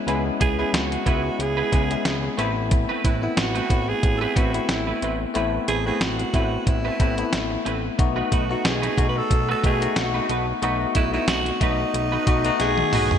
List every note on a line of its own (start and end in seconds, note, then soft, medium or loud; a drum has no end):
0.00 0.07 G#3 medium
0.00 0.07 B3 medium
0.00 0.08 C#4 medium
0.00 0.08 E4 medium
0.07 0.31 C#2 loud
0.07 0.45 G#3 medium
0.07 0.26 B3 medium
0.07 0.45 B3 medium
0.07 0.46 C#4 medium
0.07 0.26 E4 medium
0.07 0.46 E4 medium
0.07 0.25 G#4 medium
0.07 0.24 B4 medium
0.07 closed hi-hat medium
0.25 muted clean electric guitar stroke soft
0.40 0.64 C#2 medium
0.40 0.55 B3 medium
0.40 0.56 E4 medium
0.40 0.56 G#4 medium
0.40 0.58 G#4 loud
0.40 0.56 B4 medium
0.40 kick medium
0.40 closed hi-hat medium
0.58 0.95 G#3 medium
0.58 0.96 B3 medium
0.58 0.72 B3 soft
0.58 0.96 C#4 medium
0.58 0.96 E4 medium
0.58 0.72 E4 medium
0.58 0.71 G#4 medium
0.58 0.76 G#4 medium
0.58 0.71 B4 medium
0.73 0.97 C#2 loud
0.73 1.43 F#4 medium
0.73 snare loud
0.73 closed hi-hat medium
0.92 muted clean electric guitar stroke soft
0.92 closed hi-hat soft
1.06 1.30 C#2 loud
1.06 1.58 G#3 medium
1.06 1.25 B3 medium
1.06 1.58 B3 medium
1.06 1.58 C#4 medium
1.06 1.24 E4 medium
1.06 1.58 E4 medium
1.06 1.24 G#4 medium
1.06 1.23 B4 medium
1.06 kick medium
1.06 closed hi-hat medium
1.24 muted clean electric guitar stroke soft
1.39 1.63 C#2 loud
1.39 2.39 G#4 medium
1.39 muted clean electric guitar stroke soft
1.39 closed hi-hat medium
1.57 1.71 B3 medium
1.57 1.72 E4 medium
1.57 1.72 G#4 medium
1.57 1.73 B4 medium
1.72 1.96 C#2 loud
1.72 1.86 G#3 medium
1.72 1.87 B3 medium
1.72 1.86 B3 medium
1.72 1.86 C#4 medium
1.72 1.88 E4 medium
1.72 1.86 E4 medium
1.72 1.88 G#4 medium
1.72 1.88 B4 medium
1.72 kick medium
1.72 closed hi-hat medium
1.91 2.38 G#3 medium
1.91 2.37 B3 medium
1.91 2.39 C#4 medium
1.91 2.38 E4 medium
1.91 muted clean electric guitar stroke medium
1.91 closed hi-hat medium
2.05 2.29 C#2 loud
2.05 muted clean electric guitar stroke soft
2.05 snare loud
2.05 closed hi-hat medium
2.23 muted clean electric guitar stroke soft
2.37 2.86 A1 loud
2.37 3.04 A3 medium
2.37 2.57 A3 medium
2.37 3.04 B3 medium
2.37 2.57 C4 medium
2.37 3.04 C4 medium
2.37 2.56 E4 medium
2.37 3.04 E4 medium
2.37 2.55 B4 medium
2.37 closed hi-hat medium
2.56 muted clean electric guitar stroke soft
2.71 muted clean electric guitar stroke soft
2.71 kick loud
2.71 closed hi-hat medium
2.89 3.03 A3 medium
2.89 3.03 C4 medium
2.89 3.04 E4 medium
2.89 3.04 B4 medium
3.04 3.28 A1 medium
3.04 3.19 A3 medium
3.04 3.20 C4 medium
3.04 3.21 E4 medium
3.04 3.20 E4 medium
3.04 3.20 B4 medium
3.04 kick medium
3.04 closed hi-hat medium
3.22 3.59 A3 medium
3.22 3.59 B3 medium
3.22 3.59 C4 medium
3.22 3.40 E4 medium
3.22 3.60 E4 medium
3.22 muted clean electric guitar stroke soft
3.37 3.61 A1 loud
3.37 3.90 F#4 medium
3.37 muted clean electric guitar stroke soft
3.37 snare loud
3.37 closed hi-hat medium
3.55 3.68 A3 medium
3.55 3.69 C4 medium
3.55 3.69 E4 medium
3.55 3.70 B4 medium
3.55 closed hi-hat soft
3.69 3.94 A1 loud
3.69 4.21 A3 medium
3.69 4.21 B3 medium
3.69 4.22 C4 medium
3.69 4.22 E4 medium
3.69 muted clean electric guitar stroke soft
3.69 kick medium
3.69 closed hi-hat medium
3.88 4.17 G#4 medium
3.88 muted clean electric guitar stroke soft
4.03 4.27 A1 medium
4.03 muted clean electric guitar stroke soft
4.03 kick medium
4.03 closed hi-hat medium
4.18 4.36 E4 medium
4.18 4.38 G#4 medium
4.18 4.22 A4 medium
4.18 4.36 B4 medium
4.22 4.35 A3 medium
4.22 4.35 C4 medium
4.36 4.60 A1 loud
4.36 4.50 A3 medium
4.36 4.51 A3 medium
4.36 4.50 B3 medium
4.36 4.51 C4 medium
4.36 4.50 C4 medium
4.36 4.52 E4 medium
4.36 4.50 E4 medium
4.36 4.71 F#4 medium
4.36 4.52 B4 medium
4.36 kick medium
4.36 closed hi-hat medium
4.54 5.16 A3 medium
4.54 5.16 B3 medium
4.54 5.16 C4 medium
4.54 5.17 E4 medium
4.54 muted clean electric guitar stroke soft
4.54 closed hi-hat medium
4.69 4.93 A1 medium
4.69 5.20 E4 medium
4.69 muted clean electric guitar stroke soft
4.69 snare loud
4.69 closed hi-hat medium
4.87 5.01 A3 soft
4.87 5.00 C4 soft
4.87 5.00 E4 soft
4.87 5.00 B4 medium
5.02 5.26 A1 medium
5.02 5.21 A3 medium
5.02 5.21 C4 medium
5.02 5.20 E4 medium
5.02 5.19 B4 medium
5.02 closed hi-hat medium
5.21 muted clean electric guitar stroke soft
5.34 5.59 A1 loud
5.34 5.72 A3 medium
5.34 5.54 A3 medium
5.34 5.72 B3 medium
5.34 5.73 C4 medium
5.34 5.54 C4 medium
5.34 5.73 E4 medium
5.34 5.53 E4 medium
5.34 5.52 B4 medium
5.34 closed hi-hat medium
5.54 muted clean electric guitar stroke soft
5.68 5.92 A1 loud
5.68 5.83 A3 medium
5.68 5.83 C4 medium
5.68 5.84 E4 medium
5.68 5.85 G#4 medium
5.68 5.84 B4 medium
5.68 closed hi-hat medium
5.85 6.23 A3 medium
5.85 5.99 A3 medium
5.85 6.23 B3 medium
5.85 6.23 C4 medium
5.85 5.99 C4 medium
5.85 5.99 E4 medium
5.85 6.23 E4 medium
5.85 6.04 G#4 medium
5.85 5.98 B4 medium
6.01 6.24 A1 medium
6.01 6.68 F#4 medium
6.01 snare loud
6.01 closed hi-hat medium
6.19 muted clean electric guitar stroke soft
6.19 closed hi-hat soft
6.34 6.57 A1 loud
6.34 6.53 A3 medium
6.34 6.85 A3 medium
6.34 6.86 B3 medium
6.34 6.52 C4 medium
6.34 6.86 C4 medium
6.34 6.52 E4 medium
6.34 6.86 E4 medium
6.34 6.51 B4 medium
6.34 kick medium
6.34 closed hi-hat medium
6.52 muted clean electric guitar stroke soft
6.67 6.90 A1 loud
6.67 7.63 E4 medium
6.67 muted clean electric guitar stroke soft
6.67 kick medium
6.67 closed hi-hat medium
6.85 6.98 A3 medium
6.85 6.99 C4 medium
6.85 6.99 E4 medium
6.85 7.00 B4 medium
6.99 7.24 A1 medium
6.99 7.15 A3 medium
6.99 7.13 A3 medium
6.99 7.14 B3 medium
6.99 7.15 C4 medium
6.99 7.14 C4 medium
6.99 7.15 E4 medium
6.99 7.14 E4 medium
6.99 7.16 B4 medium
6.99 kick medium
6.99 closed hi-hat medium
7.17 7.80 A3 medium
7.17 7.80 B3 medium
7.17 7.80 C4 medium
7.17 7.80 E4 medium
7.17 muted clean electric guitar stroke soft
7.17 closed hi-hat medium
7.32 7.57 A1 loud
7.32 muted clean electric guitar stroke soft
7.32 snare loud
7.32 closed hi-hat medium
7.50 muted clean electric guitar stroke soft
7.65 7.90 A1 loud
7.65 7.85 A3 medium
7.65 7.84 C4 medium
7.65 7.83 E4 medium
7.65 7.82 B4 medium
7.65 closed hi-hat medium
7.83 muted clean electric guitar stroke soft
7.98 8.22 B1 loud
7.98 8.36 A3 medium
7.98 8.37 B3 medium
7.98 8.37 D#4 medium
7.98 8.37 F#4 medium
7.98 muted clean electric guitar stroke soft
7.98 kick loud
7.98 closed hi-hat medium
8.16 8.30 A3 medium
8.16 8.31 D#4 medium
8.16 8.31 F#4 medium
8.16 8.32 B4 medium
8.31 8.56 B1 loud
8.31 8.47 A3 medium
8.31 8.47 D#4 medium
8.31 8.49 F#4 medium
8.31 8.47 F#4 medium
8.31 8.48 B4 medium
8.31 kick medium
8.31 closed hi-hat medium
8.49 8.87 A3 medium
8.49 8.87 B3 medium
8.49 8.87 D#4 medium
8.49 8.87 F#4 medium
8.49 8.67 F#4 medium
8.49 muted clean electric guitar stroke soft
8.64 8.89 B1 loud
8.64 9.08 G#4 medium
8.64 muted clean electric guitar stroke soft
8.64 snare loud
8.64 closed hi-hat medium
8.82 8.96 A3 medium
8.82 8.97 D#4 medium
8.82 8.97 F#4 medium
8.82 8.98 B4 medium
8.82 closed hi-hat soft
8.97 9.21 B1 loud
8.97 9.49 A3 medium
8.97 9.49 B3 medium
8.97 9.49 D#4 medium
8.97 9.49 F#4 medium
8.97 muted clean electric guitar stroke soft
8.97 kick medium
8.97 closed hi-hat medium
9.09 9.19 B4 medium
9.15 9.49 A4 medium
9.15 muted clean electric guitar stroke soft
9.31 9.54 B1 loud
9.31 muted clean electric guitar stroke soft
9.31 kick medium
9.31 closed hi-hat medium
9.49 9.62 A3 medium
9.49 9.63 D#4 medium
9.49 9.64 F#4 medium
9.49 9.64 A4 medium
9.49 9.64 B4 medium
9.63 9.87 B1 loud
9.63 9.77 A3 medium
9.63 9.79 A3 medium
9.63 9.77 B3 medium
9.63 9.77 D#4 medium
9.63 9.79 D#4 medium
9.63 9.78 F#4 medium
9.63 9.79 F#4 medium
9.63 9.99 G#4 medium
9.63 9.80 B4 medium
9.63 kick medium
9.63 closed hi-hat medium
9.81 10.43 A3 medium
9.81 10.43 B3 medium
9.81 10.44 D#4 medium
9.81 10.44 F#4 medium
9.81 muted clean electric guitar stroke soft
9.81 closed hi-hat medium
9.96 10.20 B1 loud
9.96 10.48 F#4 medium
9.96 muted clean electric guitar stroke soft
9.96 snare loud
9.96 closed hi-hat medium
10.14 10.28 A3 soft
10.14 10.28 D#4 medium
10.14 10.27 F#4 medium
10.14 10.27 B4 medium
10.29 10.53 B1 loud
10.29 10.48 A3 medium
10.29 10.48 D#4 medium
10.29 10.47 F#4 medium
10.29 10.46 B4 medium
10.29 closed hi-hat medium
10.48 muted clean electric guitar stroke soft
10.62 10.86 B1 loud
10.62 11.00 A3 medium
10.62 10.81 A3 medium
10.62 11.00 B3 medium
10.62 10.81 D#4 medium
10.62 11.01 D#4 medium
10.62 11.01 F#4 medium
10.62 10.80 F#4 medium
10.62 10.79 B4 medium
10.62 closed hi-hat medium
10.80 muted clean electric guitar stroke soft
10.95 11.19 B1 loud
10.95 11.11 A3 medium
10.95 11.11 D#4 medium
10.95 11.12 E4 medium
10.95 11.11 F#4 medium
10.95 11.11 B4 medium
10.95 kick medium
10.95 closed hi-hat medium
11.13 11.50 A3 medium
11.13 11.27 A3 soft
11.13 11.50 B3 medium
11.13 11.50 D#4 medium
11.13 11.26 D#4 medium
11.13 11.28 E4 medium
11.13 11.26 F#4 medium
11.13 11.51 F#4 medium
11.13 11.26 B4 medium
11.27 11.51 B1 loud
11.27 11.63 F#4 loud
11.27 snare loud
11.27 closed hi-hat medium
11.46 muted clean electric guitar stroke soft
11.46 closed hi-hat soft
11.61 11.85 B1 loud
11.61 12.12 A3 medium
11.61 11.80 A3 medium
11.61 12.13 B3 medium
11.61 12.60 D#4 medium
11.61 12.13 D#4 medium
11.61 11.79 D#4 medium
11.61 12.13 F#4 medium
11.61 11.79 F#4 medium
11.61 11.78 B4 medium
11.61 kick medium
11.61 closed hi-hat medium
11.79 muted clean electric guitar stroke soft
11.94 12.18 B1 loud
11.94 muted clean electric guitar stroke soft
11.94 closed hi-hat medium
12.12 12.26 A3 medium
12.12 12.26 D#4 medium
12.12 12.27 F#4 medium
12.12 12.27 B4 medium
12.26 12.51 B1 loud
12.26 12.40 A3 medium
12.26 12.42 A3 medium
12.26 12.41 B3 medium
12.26 12.41 D#4 medium
12.26 12.43 D#4 medium
12.26 12.41 F#4 medium
12.26 12.43 F#4 medium
12.26 12.43 B4 medium
12.26 kick medium
12.26 closed hi-hat medium
12.44 13.07 A3 medium
12.44 13.07 B3 medium
12.44 13.07 D#4 medium
12.44 13.08 F#4 medium
12.44 closed hi-hat medium
12.60 12.84 B1 medium
12.60 13.19 G#4 loud
12.60 muted clean electric guitar stroke soft
12.60 snare soft
12.60 closed hi-hat medium
12.78 muted clean electric guitar stroke soft
12.78 high tom medium
12.93 13.17 B1 medium
12.93 13.12 A3 medium
12.93 13.11 D#4 medium
12.93 13.11 F#4 medium
12.93 13.10 B4 medium
12.93 mid tom medium
12.93 open hi-hat medium
13.11 muted clean electric guitar stroke soft
13.11 floor tom medium